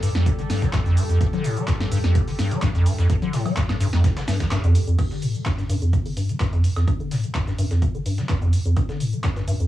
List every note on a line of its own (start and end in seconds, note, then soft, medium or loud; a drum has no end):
0.00 0.10 G2 loud
0.00 4.95 G3 medium
0.00 4.95 G4 medium
0.00 4.97 A4 medium
0.00 closed hi-hat medium
0.00 open hi-hat loud
0.00 cabasa medium
0.15 0.28 F2 medium
0.15 snare medium
0.15 snare soft
0.15 cabasa soft
0.26 0.33 A2 medium
0.26 kick loud
0.26 closed hi-hat loud
0.26 closed hi-hat medium
0.26 cabasa soft
0.39 0.42 D3 medium
0.39 closed hi-hat soft
0.39 cabasa soft
0.50 0.64 G2 medium
0.50 snare medium
0.50 closed hi-hat medium
0.50 open hi-hat loud
0.50 cabasa medium
0.62 0.72 G3 medium
0.62 kick medium
0.62 snare medium
0.62 closed hi-hat soft
0.62 cabasa soft
0.73 0.80 G2 loud
0.73 kick loud
0.73 snare medium
0.73 snare loud
0.73 clap loud
0.73 closed hi-hat medium
0.73 cabasa soft
0.86 0.98 F2 loud
0.86 closed hi-hat soft
0.86 cabasa soft
0.97 1.04 G2 loud
0.97 closed hi-hat medium
0.97 open hi-hat loud
0.97 cabasa medium
1.09 1.19 F2 medium
1.09 cabasa soft
1.21 1.28 G2 medium
1.21 kick loud
1.21 closed hi-hat medium
1.21 cabasa soft
1.33 1.46 D3 medium
1.33 snare soft
1.33 closed hi-hat soft
1.33 low conga medium
1.33 cabasa soft
1.44 1.58 A2 loud
1.44 closed hi-hat medium
1.44 open hi-hat loud
1.44 cabasa medium
1.57 1.66 G3 medium
1.57 closed hi-hat soft
1.57 cabasa soft
1.68 1.75 G2 medium
1.68 kick loud
1.68 snare loud
1.68 clap loud
1.68 closed hi-hat loud
1.68 closed hi-hat medium
1.68 cabasa soft
1.80 1.87 G2 medium
1.80 snare medium
1.80 snare soft
1.80 closed hi-hat soft
1.80 cabasa soft
1.92 1.98 G2 loud
1.92 closed hi-hat medium
1.92 open hi-hat loud
1.92 cabasa medium
2.04 2.17 F2 medium
2.04 snare medium
2.04 cabasa soft
2.15 2.22 A2 medium
2.15 kick loud
2.15 closed hi-hat loud
2.15 closed hi-hat medium
2.15 cabasa soft
2.28 2.31 D3 medium
2.28 open hi-hat medium
2.28 cabasa soft
2.39 2.53 G2 medium
2.39 snare medium
2.39 closed hi-hat medium
2.39 open hi-hat loud
2.39 cabasa medium
2.51 2.61 G3 medium
2.51 closed hi-hat soft
2.51 cabasa soft
2.62 2.69 G2 loud
2.62 kick loud
2.62 snare medium
2.62 snare loud
2.62 clap loud
2.62 closed hi-hat medium
2.62 low conga medium
2.62 cabasa soft
2.75 2.88 F2 loud
2.75 closed hi-hat soft
2.75 cabasa soft
2.86 2.93 G2 loud
2.86 closed hi-hat medium
2.86 open hi-hat loud
2.86 cabasa medium
2.98 3.08 F2 medium
2.98 snare medium
2.98 cabasa soft
3.10 3.17 G2 medium
3.10 kick loud
3.10 closed hi-hat medium
3.10 cabasa soft
3.22 3.35 D3 medium
3.22 closed hi-hat soft
3.22 low conga medium
3.22 cabasa soft
3.33 3.47 A2 loud
3.33 snare medium
3.33 closed hi-hat medium
3.33 open hi-hat loud
3.33 cabasa medium
3.46 3.55 G3 medium
3.46 closed hi-hat soft
3.46 open hi-hat medium
3.46 low conga medium
3.46 cabasa soft
3.46 high woodblock medium
3.57 3.64 G2 medium
3.57 kick loud
3.57 snare loud
3.57 clap loud
3.57 closed hi-hat loud
3.57 closed hi-hat medium
3.57 cabasa soft
3.69 3.76 G2 medium
3.69 snare medium
3.69 snare soft
3.69 closed hi-hat soft
3.69 cabasa soft
3.69 high woodblock medium
3.80 3.87 G2 loud
3.80 closed hi-hat medium
3.80 open hi-hat loud
3.80 cabasa medium
3.93 4.06 F2 medium
3.93 snare soft
3.93 snare medium
3.93 cabasa soft
4.04 4.11 A2 medium
4.04 kick loud
4.04 snare loud
4.04 closed hi-hat medium
4.04 closed hi-hat loud
4.04 cabasa soft
4.17 4.20 D3 medium
4.17 snare loud
4.17 closed hi-hat soft
4.17 closed hi-hat medium
4.17 cabasa soft
4.28 4.42 G2 medium
4.28 snare medium
4.28 snare loud
4.28 closed hi-hat medium
4.28 open hi-hat loud
4.28 cabasa medium
4.40 4.49 G3 medium
4.40 kick medium
4.40 snare loud
4.40 closed hi-hat medium
4.40 cabasa soft
4.51 4.58 G2 loud
4.51 snare medium
4.51 snare loud
4.51 clap loud
4.51 closed hi-hat loud
4.51 closed hi-hat medium
4.51 cabasa soft
4.64 4.76 F2 loud
4.64 closed hi-hat soft
4.64 cabasa soft
4.75 4.82 G2 loud
4.75 closed hi-hat medium
4.75 open hi-hat loud
4.75 cabasa medium
4.87 4.97 F2 medium
4.87 closed hi-hat soft
4.87 cabasa soft
4.99 5.05 G2 medium
4.99 kick loud
4.99 closed hi-hat medium
4.99 crash medium
4.99 cabasa soft
4.99 high woodblock medium
5.11 5.24 D3 medium
5.11 snare soft
5.11 closed hi-hat soft
5.11 cabasa soft
5.22 5.36 A2 medium
5.22 closed hi-hat medium
5.22 open hi-hat loud
5.22 cabasa medium
5.35 5.44 G3 medium
5.35 closed hi-hat soft
5.35 cabasa soft
5.46 5.53 G2 medium
5.46 kick loud
5.46 snare loud
5.46 clap loud
5.46 closed hi-hat medium
5.46 cabasa soft
5.58 5.64 G2 medium
5.58 snare soft
5.58 closed hi-hat soft
5.58 cabasa soft
5.69 5.76 G2 loud
5.69 closed hi-hat medium
5.69 open hi-hat loud
5.69 cabasa medium
5.82 5.95 F2 medium
5.82 closed hi-hat medium
5.82 cabasa soft
5.93 6.00 A2 medium
5.93 kick loud
5.93 closed hi-hat medium
5.93 cabasa soft
6.06 6.09 D3 medium
6.06 open hi-hat medium
6.06 cabasa soft
6.17 6.31 G2 medium
6.17 closed hi-hat medium
6.17 open hi-hat loud
6.17 cabasa medium
6.29 6.39 G3 medium
6.29 closed hi-hat medium
6.29 closed hi-hat soft
6.29 cabasa soft
6.40 6.47 G2 loud
6.40 kick loud
6.40 snare loud
6.40 clap loud
6.40 closed hi-hat medium
6.40 cabasa soft
6.53 6.65 F2 loud
6.53 closed hi-hat soft
6.53 cabasa soft
6.64 6.71 G2 loud
6.64 closed hi-hat medium
6.64 open hi-hat loud
6.64 cabasa medium
6.77 6.86 F2 medium
6.77 snare medium
6.77 cabasa soft
6.77 high woodblock medium
6.88 6.95 G2 medium
6.88 kick loud
6.88 closed hi-hat medium
6.88 cabasa soft
6.88 high woodblock medium
7.00 7.13 D3 medium
7.00 closed hi-hat soft
7.00 cabasa soft
7.11 7.25 A2 loud
7.11 snare medium
7.11 closed hi-hat medium
7.11 open hi-hat loud
7.11 cabasa medium
7.24 7.33 G3 medium
7.24 closed hi-hat soft
7.24 cabasa soft
7.35 7.42 G2 medium
7.35 kick loud
7.35 snare loud
7.35 clap loud
7.35 closed hi-hat medium
7.35 cabasa soft
7.47 7.54 G2 medium
7.47 snare soft
7.47 closed hi-hat soft
7.47 cabasa soft
7.59 7.65 G2 loud
7.59 closed hi-hat medium
7.59 open hi-hat loud
7.59 cabasa medium
7.71 7.84 F2 medium
7.71 snare soft
7.71 closed hi-hat medium
7.71 cabasa soft
7.82 7.89 A2 medium
7.82 kick loud
7.82 closed hi-hat medium
7.82 cabasa soft
7.95 7.98 D3 medium
7.95 closed hi-hat soft
7.95 cabasa soft
8.06 8.20 G2 medium
8.06 closed hi-hat medium
8.06 open hi-hat loud
8.06 cabasa medium
8.18 8.27 G3 medium
8.18 snare soft
8.18 closed hi-hat soft
8.18 cabasa soft
8.29 8.36 G2 loud
8.29 kick loud
8.29 snare loud
8.29 clap loud
8.29 closed hi-hat medium
8.29 closed hi-hat soft
8.29 cabasa soft
8.42 8.55 F2 loud
8.42 closed hi-hat soft
8.42 cabasa soft
8.53 8.60 G2 loud
8.53 closed hi-hat medium
8.53 open hi-hat loud
8.53 cabasa medium
8.65 8.75 F2 medium
8.65 closed hi-hat medium
8.65 cabasa soft
8.77 8.84 G2 medium
8.77 kick loud
8.77 closed hi-hat medium
8.77 closed hi-hat soft
8.77 cabasa soft
8.77 high woodblock medium
8.89 9.02 D3 medium
8.89 snare soft
8.89 closed hi-hat soft
8.89 cabasa soft
9.00 9.14 A2 loud
9.00 closed hi-hat medium
9.00 open hi-hat loud
9.00 cabasa medium
9.13 9.22 G3 medium
9.13 closed hi-hat soft
9.13 cabasa soft
9.24 9.31 G2 medium
9.24 kick loud
9.24 snare loud
9.24 clap loud
9.24 closed hi-hat medium
9.24 closed hi-hat soft
9.24 cabasa soft
9.36 9.43 G2 medium
9.36 snare soft
9.36 closed hi-hat soft
9.36 cabasa soft
9.47 9.54 G2 loud
9.47 closed hi-hat medium
9.47 open hi-hat loud
9.47 cabasa medium
9.60 9.67 F2 medium
9.60 closed hi-hat medium
9.60 cabasa soft